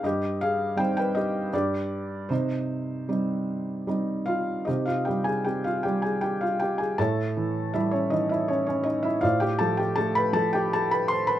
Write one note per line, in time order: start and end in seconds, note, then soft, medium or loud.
0.03 1.49 G2 medium
0.03 0.40 G4 medium
0.03 0.42 D#5 medium
0.41 0.76 G#4 medium
0.41 0.79 F5 medium
0.76 1.50 G3 soft
0.76 1.50 C4 soft
0.76 1.51 D#4 soft
0.76 0.96 C5 medium
0.76 0.95 G5 medium
0.97 1.15 B4 medium
0.97 1.16 G5 medium
1.15 1.51 G4 medium
1.15 1.50 D#5 medium
1.53 2.28 G2 medium
1.53 2.28 G4 medium
1.53 2.33 D5 medium
2.29 4.64 C3 medium
2.29 3.08 D#4 medium
2.29 4.23 C5 medium
3.09 3.85 G3 soft
3.09 3.86 C4 soft
3.09 3.86 D#4 soft
3.87 4.66 G3 soft
3.87 4.66 C4 soft
3.87 4.65 D#4 soft
4.26 4.65 F4 medium
4.26 4.68 F5 medium
4.65 6.95 C3 medium
4.65 4.86 D#4 soft
4.65 4.86 G4 soft
4.65 4.86 C5 soft
4.65 4.87 D#5 medium
4.86 5.06 F4 soft
4.86 5.07 F5 medium
5.05 5.84 G3 soft
5.05 5.25 G4 soft
5.05 5.26 G5 medium
5.24 5.45 G#4 soft
5.24 5.46 G#5 medium
5.45 6.95 C4 soft
5.45 5.64 G4 medium
5.45 5.65 G5 medium
5.64 5.84 F4 soft
5.64 5.85 F5 medium
5.83 6.96 G3 soft
5.83 6.03 G4 soft
5.83 6.04 G5 medium
6.02 6.22 G#4 soft
6.02 6.21 G#5 medium
6.21 6.41 G4 medium
6.21 6.42 G5 medium
6.41 6.60 F4 soft
6.41 6.61 F5 medium
6.60 6.80 G4 medium
6.60 6.80 G5 medium
6.78 6.98 G#4 medium
6.78 6.99 G#5 medium
6.98 9.19 A2 medium
6.98 7.71 A4 medium
6.98 7.71 C#5 medium
6.98 7.71 E5 medium
6.98 7.76 A5 medium
7.37 8.09 E3 soft
7.74 9.20 G3 soft
7.74 7.92 E4 medium
7.74 7.93 E5 medium
7.91 8.11 C#4 medium
7.91 8.11 C#5 medium
8.10 9.20 E3 soft
8.10 8.29 D#4 medium
8.10 8.30 D#5 medium
8.29 8.48 E4 medium
8.29 8.49 E5 medium
8.48 8.67 C#4 medium
8.48 8.65 C#5 medium
8.67 8.86 C#4 medium
8.67 8.86 C#5 medium
8.84 9.03 D#4 medium
8.84 9.04 D#5 medium
9.03 9.22 E4 medium
9.03 9.23 E5 medium
9.21 11.39 A2 medium
9.21 9.41 F4 medium
9.21 9.41 C5 medium
9.21 9.41 D5 medium
9.21 9.42 F5 medium
9.40 9.59 G4 medium
9.40 9.58 G5 medium
9.59 10.31 F3 medium
9.59 9.78 A4 medium
9.59 9.79 A5 medium
9.77 9.97 G4 medium
9.77 9.97 G5 medium
9.96 11.39 A3 medium
9.96 10.15 A4 medium
9.96 10.16 A5 medium
10.15 10.34 B4 medium
10.15 10.35 B5 medium
10.33 11.39 F3 medium
10.33 10.52 A4 medium
10.33 10.51 A5 medium
10.53 10.71 G4 medium
10.53 10.72 G5 medium
10.73 10.90 A4 medium
10.73 10.91 A5 medium
10.91 11.09 B4 medium
10.91 11.10 B5 medium
11.08 11.27 C5 medium
11.08 11.26 C6 medium
11.27 11.39 B4 medium
11.27 11.39 B5 medium